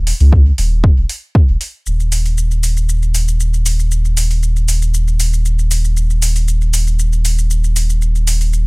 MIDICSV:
0, 0, Header, 1, 3, 480
1, 0, Start_track
1, 0, Tempo, 512821
1, 1745, Time_signature, 4, 2, 24, 8
1, 8114, End_track
2, 0, Start_track
2, 0, Title_t, "Sub bass"
2, 0, Program_c, 0, 38
2, 0, Note_on_c, 0, 27, 93
2, 114, Note_off_c, 0, 27, 0
2, 191, Note_on_c, 0, 37, 103
2, 476, Note_off_c, 0, 37, 0
2, 544, Note_on_c, 0, 27, 109
2, 835, Note_off_c, 0, 27, 0
2, 911, Note_on_c, 0, 27, 97
2, 982, Note_off_c, 0, 27, 0
2, 1391, Note_on_c, 0, 27, 86
2, 1461, Note_off_c, 0, 27, 0
2, 1744, Note_on_c, 0, 27, 82
2, 8114, Note_off_c, 0, 27, 0
2, 8114, End_track
3, 0, Start_track
3, 0, Title_t, "Drums"
3, 64, Note_on_c, 9, 46, 78
3, 158, Note_off_c, 9, 46, 0
3, 191, Note_on_c, 9, 46, 34
3, 285, Note_off_c, 9, 46, 0
3, 304, Note_on_c, 9, 36, 103
3, 398, Note_off_c, 9, 36, 0
3, 544, Note_on_c, 9, 46, 74
3, 638, Note_off_c, 9, 46, 0
3, 784, Note_on_c, 9, 36, 124
3, 878, Note_off_c, 9, 36, 0
3, 1025, Note_on_c, 9, 46, 86
3, 1118, Note_off_c, 9, 46, 0
3, 1264, Note_on_c, 9, 36, 105
3, 1358, Note_off_c, 9, 36, 0
3, 1505, Note_on_c, 9, 46, 68
3, 1598, Note_off_c, 9, 46, 0
3, 1745, Note_on_c, 9, 82, 39
3, 1838, Note_off_c, 9, 82, 0
3, 1871, Note_on_c, 9, 82, 20
3, 1965, Note_off_c, 9, 82, 0
3, 1984, Note_on_c, 9, 46, 74
3, 1984, Note_on_c, 9, 82, 67
3, 2078, Note_off_c, 9, 46, 0
3, 2078, Note_off_c, 9, 82, 0
3, 2111, Note_on_c, 9, 46, 32
3, 2111, Note_on_c, 9, 82, 30
3, 2205, Note_off_c, 9, 46, 0
3, 2205, Note_off_c, 9, 82, 0
3, 2224, Note_on_c, 9, 82, 38
3, 2318, Note_off_c, 9, 82, 0
3, 2351, Note_on_c, 9, 82, 19
3, 2445, Note_off_c, 9, 82, 0
3, 2464, Note_on_c, 9, 46, 67
3, 2464, Note_on_c, 9, 82, 68
3, 2558, Note_off_c, 9, 46, 0
3, 2558, Note_off_c, 9, 82, 0
3, 2591, Note_on_c, 9, 82, 31
3, 2684, Note_off_c, 9, 82, 0
3, 2705, Note_on_c, 9, 82, 42
3, 2798, Note_off_c, 9, 82, 0
3, 2831, Note_on_c, 9, 82, 19
3, 2925, Note_off_c, 9, 82, 0
3, 2944, Note_on_c, 9, 46, 77
3, 2944, Note_on_c, 9, 82, 67
3, 3038, Note_off_c, 9, 46, 0
3, 3038, Note_off_c, 9, 82, 0
3, 3070, Note_on_c, 9, 82, 29
3, 3164, Note_off_c, 9, 82, 0
3, 3184, Note_on_c, 9, 82, 38
3, 3277, Note_off_c, 9, 82, 0
3, 3311, Note_on_c, 9, 82, 21
3, 3404, Note_off_c, 9, 82, 0
3, 3424, Note_on_c, 9, 46, 70
3, 3424, Note_on_c, 9, 82, 69
3, 3517, Note_off_c, 9, 46, 0
3, 3517, Note_off_c, 9, 82, 0
3, 3551, Note_on_c, 9, 82, 30
3, 3644, Note_off_c, 9, 82, 0
3, 3664, Note_on_c, 9, 82, 39
3, 3757, Note_off_c, 9, 82, 0
3, 3790, Note_on_c, 9, 82, 20
3, 3884, Note_off_c, 9, 82, 0
3, 3904, Note_on_c, 9, 46, 82
3, 3904, Note_on_c, 9, 82, 68
3, 3997, Note_off_c, 9, 46, 0
3, 3997, Note_off_c, 9, 82, 0
3, 4031, Note_on_c, 9, 46, 35
3, 4031, Note_on_c, 9, 82, 30
3, 4124, Note_off_c, 9, 46, 0
3, 4124, Note_off_c, 9, 82, 0
3, 4144, Note_on_c, 9, 82, 37
3, 4238, Note_off_c, 9, 82, 0
3, 4271, Note_on_c, 9, 82, 19
3, 4364, Note_off_c, 9, 82, 0
3, 4384, Note_on_c, 9, 46, 69
3, 4384, Note_on_c, 9, 82, 67
3, 4478, Note_off_c, 9, 46, 0
3, 4478, Note_off_c, 9, 82, 0
3, 4511, Note_on_c, 9, 82, 31
3, 4604, Note_off_c, 9, 82, 0
3, 4624, Note_on_c, 9, 82, 40
3, 4718, Note_off_c, 9, 82, 0
3, 4751, Note_on_c, 9, 82, 19
3, 4845, Note_off_c, 9, 82, 0
3, 4865, Note_on_c, 9, 46, 83
3, 4865, Note_on_c, 9, 82, 69
3, 4958, Note_off_c, 9, 46, 0
3, 4958, Note_off_c, 9, 82, 0
3, 4991, Note_on_c, 9, 82, 30
3, 5085, Note_off_c, 9, 82, 0
3, 5104, Note_on_c, 9, 82, 37
3, 5198, Note_off_c, 9, 82, 0
3, 5231, Note_on_c, 9, 82, 20
3, 5325, Note_off_c, 9, 82, 0
3, 5344, Note_on_c, 9, 46, 70
3, 5344, Note_on_c, 9, 82, 71
3, 5438, Note_off_c, 9, 46, 0
3, 5438, Note_off_c, 9, 82, 0
3, 5471, Note_on_c, 9, 82, 29
3, 5565, Note_off_c, 9, 82, 0
3, 5584, Note_on_c, 9, 82, 38
3, 5678, Note_off_c, 9, 82, 0
3, 5711, Note_on_c, 9, 82, 19
3, 5805, Note_off_c, 9, 82, 0
3, 5824, Note_on_c, 9, 46, 81
3, 5824, Note_on_c, 9, 82, 66
3, 5918, Note_off_c, 9, 46, 0
3, 5918, Note_off_c, 9, 82, 0
3, 5951, Note_on_c, 9, 46, 35
3, 5951, Note_on_c, 9, 82, 30
3, 6044, Note_off_c, 9, 46, 0
3, 6044, Note_off_c, 9, 82, 0
3, 6064, Note_on_c, 9, 82, 40
3, 6157, Note_off_c, 9, 82, 0
3, 6191, Note_on_c, 9, 82, 18
3, 6284, Note_off_c, 9, 82, 0
3, 6304, Note_on_c, 9, 46, 73
3, 6304, Note_on_c, 9, 82, 72
3, 6398, Note_off_c, 9, 46, 0
3, 6398, Note_off_c, 9, 82, 0
3, 6431, Note_on_c, 9, 82, 29
3, 6525, Note_off_c, 9, 82, 0
3, 6544, Note_on_c, 9, 82, 38
3, 6638, Note_off_c, 9, 82, 0
3, 6671, Note_on_c, 9, 82, 19
3, 6764, Note_off_c, 9, 82, 0
3, 6785, Note_on_c, 9, 46, 83
3, 6785, Note_on_c, 9, 82, 63
3, 6878, Note_off_c, 9, 46, 0
3, 6878, Note_off_c, 9, 82, 0
3, 6911, Note_on_c, 9, 82, 29
3, 7005, Note_off_c, 9, 82, 0
3, 7024, Note_on_c, 9, 82, 36
3, 7118, Note_off_c, 9, 82, 0
3, 7151, Note_on_c, 9, 82, 20
3, 7245, Note_off_c, 9, 82, 0
3, 7265, Note_on_c, 9, 46, 74
3, 7265, Note_on_c, 9, 82, 70
3, 7358, Note_off_c, 9, 46, 0
3, 7358, Note_off_c, 9, 82, 0
3, 7391, Note_on_c, 9, 82, 28
3, 7485, Note_off_c, 9, 82, 0
3, 7504, Note_on_c, 9, 82, 37
3, 7598, Note_off_c, 9, 82, 0
3, 7631, Note_on_c, 9, 82, 19
3, 7725, Note_off_c, 9, 82, 0
3, 7744, Note_on_c, 9, 46, 83
3, 7744, Note_on_c, 9, 82, 61
3, 7838, Note_off_c, 9, 46, 0
3, 7838, Note_off_c, 9, 82, 0
3, 7871, Note_on_c, 9, 46, 34
3, 7871, Note_on_c, 9, 82, 28
3, 7965, Note_off_c, 9, 46, 0
3, 7965, Note_off_c, 9, 82, 0
3, 7984, Note_on_c, 9, 82, 37
3, 8078, Note_off_c, 9, 82, 0
3, 8114, End_track
0, 0, End_of_file